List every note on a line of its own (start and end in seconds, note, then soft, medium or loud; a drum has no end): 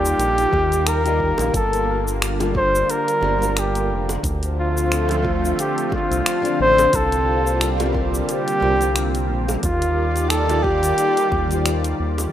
0.00 0.15 D#2 loud
0.00 0.48 D#3 medium
0.00 1.51 D#3 medium
0.00 4.19 G3 medium
0.00 4.19 A#3 medium
0.00 0.49 D#4 medium
0.00 0.49 F4 medium
0.00 4.19 F4 loud
0.00 0.50 G4 medium
0.00 0.89 G4 loud
0.00 0.50 D5 medium
0.05 shaker medium
0.19 0.47 A#1 medium
0.19 closed hi-hat medium
0.19 shaker medium
0.38 closed hi-hat soft
0.38 shaker soft
0.51 1.33 D#2 loud
0.51 1.00 D#3 medium
0.51 1.00 D#4 medium
0.51 1.01 F4 medium
0.51 1.01 G4 medium
0.51 1.02 D#5 medium
0.51 kick loud
0.51 high bongo medium
0.72 closed hi-hat soft
0.72 shaker medium
0.87 1.54 A#4 loud
0.87 finger snap loud
0.87 closed hi-hat medium
0.87 shaker medium
1.04 1.51 D#3 loud
1.04 1.52 D#4 medium
1.04 1.52 F4 medium
1.04 1.52 G4 medium
1.04 1.53 D#5 loud
1.04 closed hi-hat soft
1.04 shaker soft
1.20 kick medium
1.38 1.51 A#1 medium
1.38 closed hi-hat soft
1.38 high bongo medium
1.38 shaker medium
1.54 2.84 G1 loud
1.54 9.59 D3 medium
1.54 2.18 A4 loud
1.54 kick loud
1.54 closed hi-hat medium
1.54 shaker medium
1.73 closed hi-hat soft
1.73 shaker soft
2.08 shaker medium
2.22 finger snap loud
2.22 closed hi-hat medium
2.22 shaker medium
2.39 2.52 G3 medium
2.39 2.53 D4 medium
2.39 2.53 F4 medium
2.39 2.54 A#4 loud
2.39 closed hi-hat soft
2.39 high bongo medium
2.39 shaker soft
2.54 3.18 G3 medium
2.54 3.19 D4 medium
2.54 3.19 F4 medium
2.54 3.20 A4 medium
2.54 3.20 A#4 medium
2.54 2.92 C5 loud
2.54 kick loud
2.75 shaker medium
2.90 3.60 A#4 loud
2.90 closed hi-hat medium
2.90 shaker medium
3.08 closed hi-hat soft
3.08 shaker soft
3.21 3.92 G1 loud
3.21 3.37 G3 medium
3.21 3.38 D4 medium
3.21 3.38 F4 medium
3.21 3.39 A#4 loud
3.21 high bongo medium
3.38 4.20 G3 medium
3.38 4.21 D4 medium
3.38 4.22 F4 medium
3.38 closed hi-hat soft
3.43 4.24 A#4 medium
3.43 shaker medium
3.57 4.10 G4 medium
3.57 finger snap medium
3.57 closed hi-hat medium
3.57 shaker medium
3.75 closed hi-hat soft
3.75 shaker soft
3.90 4.18 F1 medium
4.09 closed hi-hat soft
4.09 high bongo medium
4.09 shaker medium
4.23 5.54 D2 loud
4.23 6.91 F3 medium
4.23 6.91 A3 medium
4.23 9.59 C4 medium
4.23 9.59 F4 loud
4.23 kick loud
4.23 closed hi-hat medium
4.23 shaker medium
4.43 closed hi-hat soft
4.43 shaker soft
4.59 5.55 F4 medium
4.77 shaker medium
4.92 finger snap medium
4.92 closed hi-hat medium
4.92 shaker soft
5.08 5.20 D3 medium
5.08 5.21 D4 medium
5.08 5.21 F4 medium
5.08 5.22 C5 medium
5.08 closed hi-hat soft
5.08 high bongo medium
5.08 shaker soft
5.22 5.87 D3 medium
5.22 5.88 D4 medium
5.22 5.88 F4 medium
5.22 5.89 C5 medium
5.22 kick loud
5.45 shaker medium
5.59 5.95 G4 loud
5.59 closed hi-hat medium
5.59 shaker medium
5.78 closed hi-hat soft
5.78 shaker soft
5.89 6.39 D3 medium
5.89 6.39 D4 medium
5.89 6.39 F4 medium
5.89 6.40 D5 medium
5.89 kick loud
5.89 high bongo medium
5.93 6.60 F4 loud
6.11 6.23 C2 loud
6.11 closed hi-hat soft
6.11 shaker medium
6.26 finger snap loud
6.26 closed hi-hat medium
6.26 shaker medium
6.42 6.90 D3 loud
6.42 6.91 D4 medium
6.42 6.92 A4 medium
6.42 6.92 D5 loud
6.42 closed hi-hat soft
6.42 shaker soft
6.60 6.88 A1 medium
6.60 6.97 C5 loud
6.78 closed hi-hat soft
6.78 high bongo loud
6.78 shaker medium
6.93 8.24 C2 loud
6.93 9.61 G3 medium
6.93 12.29 A#3 medium
6.93 7.95 A4 loud
6.93 kick loud
6.93 closed hi-hat medium
6.93 shaker medium
7.12 closed hi-hat soft
7.12 shaker soft
7.47 shaker medium
7.61 finger snap medium
7.61 closed hi-hat medium
7.61 shaker soft
7.78 7.91 C3 medium
7.78 7.92 C4 medium
7.78 7.92 F4 medium
7.78 7.92 A#4 medium
7.78 7.93 D5 loud
7.78 closed hi-hat soft
7.78 high bongo medium
7.78 shaker soft
7.93 8.57 C3 medium
7.93 8.58 C4 medium
7.93 8.58 F4 medium
7.93 8.59 A#4 medium
7.93 8.59 D5 medium
7.93 kick loud
8.14 shaker medium
8.29 9.26 G4 loud
8.29 closed hi-hat medium
8.29 shaker medium
8.48 closed hi-hat soft
8.48 shaker soft
8.60 9.31 C2 medium
8.60 8.75 C3 loud
8.60 8.77 C4 medium
8.60 8.78 F4 medium
8.60 8.78 A#4 medium
8.60 8.78 D5 loud
8.60 high bongo medium
8.76 9.59 C3 medium
8.76 9.60 C4 medium
8.76 9.61 F4 medium
8.81 9.62 A#4 medium
8.81 9.63 G5 medium
8.81 closed hi-hat soft
8.81 shaker medium
8.96 finger snap loud
8.96 closed hi-hat medium
8.96 shaker medium
9.15 closed hi-hat soft
9.15 shaker soft
9.29 9.57 A#1 loud
9.48 closed hi-hat soft
9.48 high bongo medium
9.48 shaker medium
9.62 10.93 D#2 loud
9.62 12.30 D#3 medium
9.62 12.30 G3 medium
9.62 12.30 F4 loud
9.62 10.31 F4 loud
9.62 12.30 D5 medium
9.62 kick loud
9.62 closed hi-hat medium
9.62 shaker medium
9.82 closed hi-hat soft
9.82 shaker soft
10.16 closed hi-hat soft
10.16 shaker medium
10.30 10.64 A4 loud
10.30 finger snap loud
10.30 closed hi-hat medium
10.30 shaker medium
10.47 10.59 D#3 medium
10.47 10.60 D#4 medium
10.47 10.60 F4 medium
10.47 10.61 G4 medium
10.47 10.61 D5 medium
10.47 closed hi-hat soft
10.47 high bongo medium
10.47 shaker soft
10.63 11.27 D#3 medium
10.63 11.28 D#4 medium
10.63 11.28 F4 medium
10.63 11.98 G4 loud
10.63 11.28 G4 medium
10.63 11.29 D5 medium
10.63 kick loud
10.83 closed hi-hat soft
10.83 shaker medium
10.98 closed hi-hat medium
10.98 shaker medium
11.17 closed hi-hat soft
11.17 shaker soft
11.32 11.94 D#2 medium
11.32 kick medium
11.32 high bongo medium
11.47 12.29 D#3 medium
11.47 12.30 D#4 medium
11.47 12.31 F4 medium
11.47 closed hi-hat soft
11.47 shaker medium
11.53 12.32 G4 medium
11.53 12.32 C5 loud
11.66 finger snap loud
11.66 closed hi-hat medium
11.66 shaker medium
11.84 closed hi-hat medium
11.84 shaker soft
12.00 12.27 D#2 medium
12.18 closed hi-hat soft
12.18 high bongo medium
12.18 shaker medium